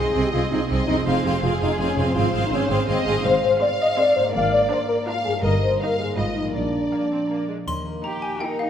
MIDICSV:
0, 0, Header, 1, 10, 480
1, 0, Start_track
1, 0, Tempo, 364742
1, 1404, Time_signature, 3, 2, 24, 8
1, 7634, Tempo, 371978
1, 11374, End_track
2, 0, Start_track
2, 0, Title_t, "Xylophone"
2, 0, Program_c, 0, 13
2, 10053, Note_on_c, 0, 84, 61
2, 10495, Note_off_c, 0, 84, 0
2, 10523, Note_on_c, 0, 82, 52
2, 10745, Note_off_c, 0, 82, 0
2, 10759, Note_on_c, 0, 80, 64
2, 10982, Note_off_c, 0, 80, 0
2, 10994, Note_on_c, 0, 79, 58
2, 11218, Note_off_c, 0, 79, 0
2, 11237, Note_on_c, 0, 77, 58
2, 11374, Note_off_c, 0, 77, 0
2, 11374, End_track
3, 0, Start_track
3, 0, Title_t, "Violin section"
3, 0, Program_c, 1, 48
3, 0, Note_on_c, 1, 75, 47
3, 0, Note_on_c, 1, 84, 51
3, 172, Note_off_c, 1, 75, 0
3, 176, Note_off_c, 1, 84, 0
3, 188, Note_on_c, 1, 75, 50
3, 191, Note_on_c, 1, 84, 51
3, 419, Note_off_c, 1, 84, 0
3, 420, Note_off_c, 1, 75, 0
3, 434, Note_on_c, 1, 84, 41
3, 436, Note_on_c, 1, 75, 42
3, 667, Note_off_c, 1, 84, 0
3, 669, Note_off_c, 1, 75, 0
3, 683, Note_on_c, 1, 84, 39
3, 685, Note_on_c, 1, 75, 38
3, 903, Note_off_c, 1, 75, 0
3, 905, Note_off_c, 1, 84, 0
3, 918, Note_on_c, 1, 75, 44
3, 921, Note_on_c, 1, 84, 43
3, 1146, Note_off_c, 1, 84, 0
3, 1149, Note_off_c, 1, 75, 0
3, 1162, Note_on_c, 1, 84, 45
3, 1165, Note_on_c, 1, 75, 48
3, 1389, Note_off_c, 1, 84, 0
3, 1400, Note_off_c, 1, 75, 0
3, 1404, Note_on_c, 1, 84, 59
3, 1409, Note_on_c, 1, 77, 55
3, 1626, Note_off_c, 1, 84, 0
3, 1630, Note_off_c, 1, 77, 0
3, 1642, Note_on_c, 1, 84, 51
3, 1646, Note_on_c, 1, 77, 53
3, 1873, Note_off_c, 1, 84, 0
3, 1881, Note_off_c, 1, 77, 0
3, 1889, Note_on_c, 1, 84, 46
3, 1896, Note_on_c, 1, 77, 51
3, 2119, Note_off_c, 1, 84, 0
3, 2122, Note_off_c, 1, 77, 0
3, 2135, Note_on_c, 1, 84, 44
3, 2138, Note_on_c, 1, 77, 45
3, 2354, Note_off_c, 1, 84, 0
3, 2356, Note_off_c, 1, 77, 0
3, 2370, Note_on_c, 1, 84, 42
3, 2372, Note_on_c, 1, 77, 48
3, 2594, Note_off_c, 1, 84, 0
3, 2597, Note_off_c, 1, 77, 0
3, 2610, Note_on_c, 1, 84, 48
3, 2613, Note_on_c, 1, 77, 49
3, 2827, Note_off_c, 1, 77, 0
3, 2830, Note_off_c, 1, 84, 0
3, 2843, Note_on_c, 1, 77, 56
3, 2845, Note_on_c, 1, 84, 58
3, 3068, Note_off_c, 1, 77, 0
3, 3074, Note_off_c, 1, 84, 0
3, 3084, Note_on_c, 1, 77, 56
3, 3089, Note_on_c, 1, 84, 54
3, 3308, Note_off_c, 1, 77, 0
3, 3314, Note_off_c, 1, 84, 0
3, 3323, Note_on_c, 1, 77, 48
3, 3329, Note_on_c, 1, 84, 44
3, 3533, Note_off_c, 1, 84, 0
3, 3537, Note_off_c, 1, 77, 0
3, 3548, Note_on_c, 1, 84, 48
3, 3553, Note_on_c, 1, 77, 53
3, 3769, Note_off_c, 1, 77, 0
3, 3769, Note_off_c, 1, 84, 0
3, 3785, Note_on_c, 1, 77, 50
3, 3785, Note_on_c, 1, 84, 48
3, 4004, Note_off_c, 1, 77, 0
3, 4008, Note_off_c, 1, 84, 0
3, 4020, Note_on_c, 1, 77, 57
3, 4024, Note_on_c, 1, 84, 54
3, 4260, Note_off_c, 1, 77, 0
3, 4262, Note_off_c, 1, 84, 0
3, 4743, Note_on_c, 1, 84, 57
3, 4747, Note_on_c, 1, 77, 54
3, 5105, Note_off_c, 1, 84, 0
3, 5108, Note_off_c, 1, 77, 0
3, 5225, Note_on_c, 1, 77, 60
3, 5230, Note_on_c, 1, 84, 56
3, 5585, Note_off_c, 1, 77, 0
3, 5587, Note_off_c, 1, 84, 0
3, 6195, Note_on_c, 1, 82, 45
3, 6197, Note_on_c, 1, 77, 54
3, 6552, Note_off_c, 1, 82, 0
3, 6553, Note_off_c, 1, 77, 0
3, 6678, Note_on_c, 1, 77, 51
3, 6678, Note_on_c, 1, 82, 47
3, 7033, Note_off_c, 1, 77, 0
3, 7033, Note_off_c, 1, 82, 0
3, 7640, Note_on_c, 1, 75, 46
3, 7644, Note_on_c, 1, 82, 48
3, 7992, Note_off_c, 1, 75, 0
3, 7994, Note_off_c, 1, 82, 0
3, 8122, Note_on_c, 1, 75, 40
3, 8123, Note_on_c, 1, 83, 42
3, 8474, Note_off_c, 1, 75, 0
3, 8475, Note_off_c, 1, 83, 0
3, 9080, Note_on_c, 1, 77, 37
3, 9084, Note_on_c, 1, 82, 35
3, 9439, Note_off_c, 1, 77, 0
3, 9441, Note_off_c, 1, 82, 0
3, 9561, Note_on_c, 1, 77, 34
3, 9562, Note_on_c, 1, 82, 36
3, 9923, Note_off_c, 1, 77, 0
3, 9924, Note_off_c, 1, 82, 0
3, 10520, Note_on_c, 1, 63, 39
3, 10876, Note_off_c, 1, 63, 0
3, 10998, Note_on_c, 1, 63, 38
3, 11352, Note_off_c, 1, 63, 0
3, 11374, End_track
4, 0, Start_track
4, 0, Title_t, "Violin section"
4, 0, Program_c, 2, 48
4, 0, Note_on_c, 2, 75, 56
4, 903, Note_off_c, 2, 75, 0
4, 928, Note_on_c, 2, 75, 60
4, 1398, Note_off_c, 2, 75, 0
4, 1413, Note_on_c, 2, 72, 52
4, 1881, Note_off_c, 2, 72, 0
4, 1896, Note_on_c, 2, 68, 66
4, 2838, Note_on_c, 2, 72, 67
4, 2848, Note_off_c, 2, 68, 0
4, 3777, Note_off_c, 2, 72, 0
4, 3802, Note_on_c, 2, 75, 74
4, 4266, Note_off_c, 2, 75, 0
4, 4268, Note_on_c, 2, 77, 62
4, 4726, Note_off_c, 2, 77, 0
4, 4742, Note_on_c, 2, 77, 75
4, 5687, Note_off_c, 2, 77, 0
4, 5710, Note_on_c, 2, 74, 60
4, 6654, Note_off_c, 2, 74, 0
4, 6680, Note_on_c, 2, 77, 67
4, 7147, Note_off_c, 2, 77, 0
4, 7149, Note_on_c, 2, 75, 53
4, 7623, Note_off_c, 2, 75, 0
4, 7630, Note_on_c, 2, 77, 61
4, 8099, Note_off_c, 2, 77, 0
4, 8111, Note_on_c, 2, 75, 53
4, 8582, Note_off_c, 2, 75, 0
4, 8593, Note_on_c, 2, 74, 39
4, 9781, Note_off_c, 2, 74, 0
4, 10528, Note_on_c, 2, 67, 45
4, 10881, Note_off_c, 2, 67, 0
4, 11008, Note_on_c, 2, 67, 45
4, 11358, Note_off_c, 2, 67, 0
4, 11374, End_track
5, 0, Start_track
5, 0, Title_t, "French horn section"
5, 0, Program_c, 3, 60
5, 0, Note_on_c, 3, 68, 71
5, 310, Note_on_c, 3, 67, 61
5, 315, Note_off_c, 3, 68, 0
5, 366, Note_off_c, 3, 67, 0
5, 429, Note_on_c, 3, 65, 65
5, 539, Note_off_c, 3, 65, 0
5, 679, Note_on_c, 3, 63, 63
5, 787, Note_off_c, 3, 63, 0
5, 923, Note_on_c, 3, 60, 67
5, 1143, Note_on_c, 3, 63, 65
5, 1158, Note_off_c, 3, 60, 0
5, 1256, Note_off_c, 3, 63, 0
5, 1396, Note_on_c, 3, 65, 78
5, 1506, Note_off_c, 3, 65, 0
5, 1648, Note_on_c, 3, 67, 70
5, 1756, Note_off_c, 3, 67, 0
5, 1895, Note_on_c, 3, 65, 78
5, 2001, Note_off_c, 3, 65, 0
5, 2138, Note_on_c, 3, 63, 75
5, 2243, Note_off_c, 3, 63, 0
5, 2365, Note_on_c, 3, 61, 65
5, 2676, Note_on_c, 3, 60, 68
5, 2678, Note_off_c, 3, 61, 0
5, 2836, Note_off_c, 3, 60, 0
5, 2841, Note_on_c, 3, 65, 77
5, 3003, Note_off_c, 3, 65, 0
5, 3216, Note_on_c, 3, 63, 67
5, 3326, Note_off_c, 3, 63, 0
5, 3340, Note_on_c, 3, 61, 81
5, 3564, Note_on_c, 3, 60, 72
5, 3570, Note_off_c, 3, 61, 0
5, 3670, Note_off_c, 3, 60, 0
5, 3802, Note_on_c, 3, 60, 75
5, 4033, Note_off_c, 3, 60, 0
5, 4052, Note_on_c, 3, 68, 71
5, 4155, Note_off_c, 3, 68, 0
5, 4291, Note_on_c, 3, 72, 91
5, 4395, Note_off_c, 3, 72, 0
5, 4525, Note_on_c, 3, 72, 82
5, 4630, Note_off_c, 3, 72, 0
5, 4762, Note_on_c, 3, 74, 82
5, 4868, Note_off_c, 3, 74, 0
5, 5005, Note_on_c, 3, 75, 84
5, 5111, Note_off_c, 3, 75, 0
5, 5242, Note_on_c, 3, 74, 84
5, 5472, Note_off_c, 3, 74, 0
5, 5481, Note_on_c, 3, 72, 75
5, 5586, Note_off_c, 3, 72, 0
5, 5725, Note_on_c, 3, 77, 91
5, 5953, Note_off_c, 3, 77, 0
5, 5954, Note_on_c, 3, 74, 84
5, 6061, Note_off_c, 3, 74, 0
5, 6199, Note_on_c, 3, 72, 78
5, 6306, Note_off_c, 3, 72, 0
5, 6420, Note_on_c, 3, 70, 75
5, 6531, Note_off_c, 3, 70, 0
5, 6671, Note_on_c, 3, 65, 76
5, 6780, Note_off_c, 3, 65, 0
5, 6913, Note_on_c, 3, 68, 71
5, 7021, Note_off_c, 3, 68, 0
5, 7158, Note_on_c, 3, 70, 86
5, 7265, Note_off_c, 3, 70, 0
5, 7393, Note_on_c, 3, 72, 68
5, 7630, Note_off_c, 3, 72, 0
5, 7640, Note_on_c, 3, 70, 63
5, 7871, Note_off_c, 3, 70, 0
5, 7876, Note_on_c, 3, 68, 61
5, 8105, Note_on_c, 3, 65, 60
5, 8108, Note_off_c, 3, 68, 0
5, 8343, Note_off_c, 3, 65, 0
5, 8364, Note_on_c, 3, 63, 47
5, 8599, Note_off_c, 3, 63, 0
5, 8599, Note_on_c, 3, 62, 58
5, 9784, Note_off_c, 3, 62, 0
5, 11374, End_track
6, 0, Start_track
6, 0, Title_t, "Viola section"
6, 0, Program_c, 4, 48
6, 0, Note_on_c, 4, 60, 53
6, 0, Note_on_c, 4, 68, 50
6, 177, Note_off_c, 4, 68, 0
6, 178, Note_off_c, 4, 60, 0
6, 193, Note_on_c, 4, 68, 50
6, 194, Note_on_c, 4, 60, 49
6, 422, Note_off_c, 4, 60, 0
6, 424, Note_off_c, 4, 68, 0
6, 438, Note_on_c, 4, 60, 45
6, 439, Note_on_c, 4, 68, 47
6, 665, Note_off_c, 4, 68, 0
6, 669, Note_off_c, 4, 60, 0
6, 681, Note_on_c, 4, 68, 47
6, 685, Note_on_c, 4, 60, 48
6, 902, Note_off_c, 4, 68, 0
6, 903, Note_off_c, 4, 60, 0
6, 918, Note_on_c, 4, 68, 50
6, 919, Note_on_c, 4, 60, 50
6, 1150, Note_off_c, 4, 60, 0
6, 1150, Note_off_c, 4, 68, 0
6, 1166, Note_on_c, 4, 60, 51
6, 1166, Note_on_c, 4, 68, 48
6, 1396, Note_off_c, 4, 60, 0
6, 1397, Note_off_c, 4, 68, 0
6, 1412, Note_on_c, 4, 60, 58
6, 1413, Note_on_c, 4, 68, 58
6, 1631, Note_off_c, 4, 60, 0
6, 1631, Note_off_c, 4, 68, 0
6, 1647, Note_on_c, 4, 60, 49
6, 1647, Note_on_c, 4, 68, 50
6, 1870, Note_off_c, 4, 60, 0
6, 1871, Note_off_c, 4, 68, 0
6, 1885, Note_on_c, 4, 60, 53
6, 1887, Note_on_c, 4, 68, 53
6, 2110, Note_off_c, 4, 68, 0
6, 2111, Note_off_c, 4, 60, 0
6, 2126, Note_on_c, 4, 60, 47
6, 2126, Note_on_c, 4, 68, 53
6, 2361, Note_off_c, 4, 60, 0
6, 2361, Note_off_c, 4, 68, 0
6, 2374, Note_on_c, 4, 68, 54
6, 2375, Note_on_c, 4, 60, 55
6, 2591, Note_off_c, 4, 68, 0
6, 2594, Note_off_c, 4, 60, 0
6, 2607, Note_on_c, 4, 68, 53
6, 2610, Note_on_c, 4, 60, 51
6, 2826, Note_off_c, 4, 68, 0
6, 2827, Note_off_c, 4, 60, 0
6, 2842, Note_on_c, 4, 68, 54
6, 2843, Note_on_c, 4, 60, 55
6, 3058, Note_off_c, 4, 60, 0
6, 3060, Note_off_c, 4, 68, 0
6, 3074, Note_on_c, 4, 60, 54
6, 3076, Note_on_c, 4, 68, 52
6, 3299, Note_off_c, 4, 60, 0
6, 3299, Note_off_c, 4, 68, 0
6, 3314, Note_on_c, 4, 68, 58
6, 3315, Note_on_c, 4, 60, 50
6, 3527, Note_off_c, 4, 68, 0
6, 3528, Note_off_c, 4, 60, 0
6, 3542, Note_on_c, 4, 68, 51
6, 3543, Note_on_c, 4, 60, 56
6, 3770, Note_off_c, 4, 60, 0
6, 3770, Note_off_c, 4, 68, 0
6, 3786, Note_on_c, 4, 60, 57
6, 3786, Note_on_c, 4, 68, 54
6, 4006, Note_off_c, 4, 60, 0
6, 4006, Note_off_c, 4, 68, 0
6, 4022, Note_on_c, 4, 60, 51
6, 4022, Note_on_c, 4, 68, 53
6, 4261, Note_off_c, 4, 60, 0
6, 4261, Note_off_c, 4, 68, 0
6, 4734, Note_on_c, 4, 60, 54
6, 4734, Note_on_c, 4, 68, 56
6, 5100, Note_off_c, 4, 60, 0
6, 5100, Note_off_c, 4, 68, 0
6, 5223, Note_on_c, 4, 60, 61
6, 5224, Note_on_c, 4, 68, 61
6, 5584, Note_off_c, 4, 60, 0
6, 5584, Note_off_c, 4, 68, 0
6, 6180, Note_on_c, 4, 62, 56
6, 6184, Note_on_c, 4, 70, 52
6, 6544, Note_off_c, 4, 62, 0
6, 6546, Note_off_c, 4, 70, 0
6, 6659, Note_on_c, 4, 70, 53
6, 6661, Note_on_c, 4, 62, 58
6, 7023, Note_off_c, 4, 70, 0
6, 7024, Note_off_c, 4, 62, 0
6, 7631, Note_on_c, 4, 63, 49
6, 7631, Note_on_c, 4, 70, 43
6, 7987, Note_off_c, 4, 63, 0
6, 7987, Note_off_c, 4, 70, 0
6, 8102, Note_on_c, 4, 63, 44
6, 8107, Note_on_c, 4, 68, 45
6, 8463, Note_off_c, 4, 63, 0
6, 8466, Note_off_c, 4, 68, 0
6, 9085, Note_on_c, 4, 58, 42
6, 9307, Note_off_c, 4, 58, 0
6, 9326, Note_on_c, 4, 60, 46
6, 9422, Note_off_c, 4, 60, 0
6, 9561, Note_on_c, 4, 58, 45
6, 9800, Note_off_c, 4, 58, 0
6, 9803, Note_on_c, 4, 56, 37
6, 9900, Note_off_c, 4, 56, 0
6, 10524, Note_on_c, 4, 58, 45
6, 10878, Note_off_c, 4, 58, 0
6, 10995, Note_on_c, 4, 58, 43
6, 11351, Note_off_c, 4, 58, 0
6, 11374, End_track
7, 0, Start_track
7, 0, Title_t, "Harp"
7, 0, Program_c, 5, 46
7, 0, Note_on_c, 5, 48, 45
7, 0, Note_on_c, 5, 56, 40
7, 0, Note_on_c, 5, 63, 36
7, 0, Note_on_c, 5, 72, 36
7, 1162, Note_on_c, 5, 41, 50
7, 1207, Note_off_c, 5, 56, 0
7, 1222, Note_on_c, 5, 56, 37
7, 1281, Note_on_c, 5, 65, 41
7, 1303, Note_off_c, 5, 48, 0
7, 1325, Note_off_c, 5, 72, 0
7, 1341, Note_on_c, 5, 72, 40
7, 1362, Note_off_c, 5, 63, 0
7, 2600, Note_on_c, 5, 44, 49
7, 2644, Note_off_c, 5, 56, 0
7, 2660, Note_on_c, 5, 56, 41
7, 2703, Note_off_c, 5, 65, 0
7, 2718, Note_on_c, 5, 65, 42
7, 2742, Note_off_c, 5, 41, 0
7, 2766, Note_off_c, 5, 72, 0
7, 2781, Note_on_c, 5, 72, 43
7, 4015, Note_off_c, 5, 44, 0
7, 4031, Note_on_c, 5, 44, 50
7, 4076, Note_off_c, 5, 56, 0
7, 4092, Note_on_c, 5, 56, 43
7, 4136, Note_off_c, 5, 65, 0
7, 4151, Note_on_c, 5, 65, 47
7, 4195, Note_off_c, 5, 72, 0
7, 4211, Note_on_c, 5, 72, 39
7, 5456, Note_off_c, 5, 44, 0
7, 5472, Note_on_c, 5, 44, 48
7, 5529, Note_on_c, 5, 58, 43
7, 5588, Note_on_c, 5, 62, 36
7, 5649, Note_on_c, 5, 70, 46
7, 5699, Note_off_c, 5, 72, 0
7, 6912, Note_on_c, 5, 43, 41
7, 6955, Note_off_c, 5, 58, 0
7, 6971, Note_on_c, 5, 58, 37
7, 7032, Note_on_c, 5, 63, 36
7, 7053, Note_off_c, 5, 44, 0
7, 7075, Note_off_c, 5, 70, 0
7, 7082, Note_off_c, 5, 56, 0
7, 7090, Note_on_c, 5, 70, 41
7, 7111, Note_off_c, 5, 62, 0
7, 7112, Note_off_c, 5, 65, 0
7, 7876, Note_on_c, 5, 44, 37
7, 7934, Note_on_c, 5, 56, 35
7, 7976, Note_off_c, 5, 63, 0
7, 7992, Note_on_c, 5, 63, 33
7, 8012, Note_off_c, 5, 43, 0
7, 8041, Note_off_c, 5, 58, 0
7, 8051, Note_on_c, 5, 71, 32
7, 8099, Note_off_c, 5, 70, 0
7, 8362, Note_on_c, 5, 46, 36
7, 8419, Note_on_c, 5, 53, 28
7, 8478, Note_on_c, 5, 58, 26
7, 8494, Note_off_c, 5, 44, 0
7, 8523, Note_off_c, 5, 56, 0
7, 8533, Note_on_c, 5, 70, 25
7, 8552, Note_off_c, 5, 63, 0
7, 8581, Note_off_c, 5, 71, 0
7, 9951, Note_off_c, 5, 46, 0
7, 9980, Note_off_c, 5, 53, 0
7, 10044, Note_on_c, 5, 51, 45
7, 10270, Note_off_c, 5, 58, 0
7, 10285, Note_on_c, 5, 58, 37
7, 10523, Note_on_c, 5, 67, 35
7, 10764, Note_on_c, 5, 82, 34
7, 10982, Note_off_c, 5, 70, 0
7, 10998, Note_on_c, 5, 70, 35
7, 11223, Note_off_c, 5, 67, 0
7, 11238, Note_on_c, 5, 67, 34
7, 11374, Note_off_c, 5, 51, 0
7, 11374, Note_off_c, 5, 58, 0
7, 11374, Note_off_c, 5, 67, 0
7, 11374, Note_off_c, 5, 70, 0
7, 11374, Note_off_c, 5, 82, 0
7, 11374, End_track
8, 0, Start_track
8, 0, Title_t, "Cello section"
8, 0, Program_c, 6, 48
8, 194, Note_on_c, 6, 48, 51
8, 291, Note_off_c, 6, 48, 0
8, 440, Note_on_c, 6, 48, 51
8, 536, Note_off_c, 6, 48, 0
8, 680, Note_on_c, 6, 48, 54
8, 776, Note_off_c, 6, 48, 0
8, 920, Note_on_c, 6, 48, 56
8, 1017, Note_off_c, 6, 48, 0
8, 1162, Note_on_c, 6, 48, 48
8, 1258, Note_off_c, 6, 48, 0
8, 1407, Note_on_c, 6, 41, 55
8, 1503, Note_off_c, 6, 41, 0
8, 1650, Note_on_c, 6, 41, 50
8, 1745, Note_off_c, 6, 41, 0
8, 1885, Note_on_c, 6, 41, 61
8, 1981, Note_off_c, 6, 41, 0
8, 2123, Note_on_c, 6, 41, 59
8, 2220, Note_off_c, 6, 41, 0
8, 2363, Note_on_c, 6, 41, 55
8, 2459, Note_off_c, 6, 41, 0
8, 2601, Note_on_c, 6, 41, 58
8, 2697, Note_off_c, 6, 41, 0
8, 2843, Note_on_c, 6, 44, 57
8, 2938, Note_off_c, 6, 44, 0
8, 3083, Note_on_c, 6, 44, 53
8, 3179, Note_off_c, 6, 44, 0
8, 3324, Note_on_c, 6, 44, 64
8, 3419, Note_off_c, 6, 44, 0
8, 3565, Note_on_c, 6, 44, 57
8, 3659, Note_off_c, 6, 44, 0
8, 3801, Note_on_c, 6, 44, 66
8, 3895, Note_off_c, 6, 44, 0
8, 4041, Note_on_c, 6, 44, 58
8, 4135, Note_off_c, 6, 44, 0
8, 4272, Note_on_c, 6, 44, 71
8, 4650, Note_off_c, 6, 44, 0
8, 5708, Note_on_c, 6, 44, 70
8, 6089, Note_off_c, 6, 44, 0
8, 7159, Note_on_c, 6, 43, 63
8, 7537, Note_off_c, 6, 43, 0
8, 8113, Note_on_c, 6, 44, 54
8, 8492, Note_off_c, 6, 44, 0
8, 8598, Note_on_c, 6, 46, 48
8, 8980, Note_off_c, 6, 46, 0
8, 10528, Note_on_c, 6, 67, 49
8, 10969, Note_off_c, 6, 67, 0
8, 11005, Note_on_c, 6, 63, 50
8, 11374, Note_off_c, 6, 63, 0
8, 11374, End_track
9, 0, Start_track
9, 0, Title_t, "Double bass section"
9, 0, Program_c, 7, 48
9, 209, Note_on_c, 7, 36, 52
9, 303, Note_off_c, 7, 36, 0
9, 450, Note_on_c, 7, 36, 49
9, 544, Note_off_c, 7, 36, 0
9, 695, Note_on_c, 7, 36, 58
9, 788, Note_off_c, 7, 36, 0
9, 924, Note_on_c, 7, 36, 57
9, 1020, Note_off_c, 7, 36, 0
9, 1170, Note_on_c, 7, 36, 47
9, 1265, Note_off_c, 7, 36, 0
9, 1411, Note_on_c, 7, 29, 57
9, 1506, Note_off_c, 7, 29, 0
9, 1650, Note_on_c, 7, 29, 61
9, 1745, Note_off_c, 7, 29, 0
9, 1887, Note_on_c, 7, 29, 54
9, 1983, Note_off_c, 7, 29, 0
9, 2126, Note_on_c, 7, 29, 54
9, 2222, Note_off_c, 7, 29, 0
9, 2362, Note_on_c, 7, 29, 62
9, 2458, Note_off_c, 7, 29, 0
9, 2600, Note_on_c, 7, 29, 56
9, 2696, Note_off_c, 7, 29, 0
9, 2845, Note_on_c, 7, 32, 68
9, 2940, Note_off_c, 7, 32, 0
9, 3075, Note_on_c, 7, 32, 59
9, 3173, Note_off_c, 7, 32, 0
9, 3306, Note_on_c, 7, 32, 54
9, 3405, Note_off_c, 7, 32, 0
9, 3555, Note_on_c, 7, 32, 57
9, 3651, Note_off_c, 7, 32, 0
9, 3797, Note_on_c, 7, 32, 62
9, 3892, Note_off_c, 7, 32, 0
9, 4032, Note_on_c, 7, 32, 62
9, 4127, Note_off_c, 7, 32, 0
9, 4266, Note_on_c, 7, 32, 75
9, 4647, Note_off_c, 7, 32, 0
9, 5708, Note_on_c, 7, 32, 75
9, 6089, Note_off_c, 7, 32, 0
9, 7160, Note_on_c, 7, 31, 69
9, 7537, Note_off_c, 7, 31, 0
9, 8119, Note_on_c, 7, 32, 49
9, 8495, Note_off_c, 7, 32, 0
9, 8602, Note_on_c, 7, 34, 49
9, 8982, Note_off_c, 7, 34, 0
9, 10049, Note_on_c, 7, 39, 48
9, 10426, Note_off_c, 7, 39, 0
9, 11374, End_track
10, 0, Start_track
10, 0, Title_t, "Drums"
10, 10056, Note_on_c, 9, 81, 33
10, 10185, Note_off_c, 9, 81, 0
10, 11374, End_track
0, 0, End_of_file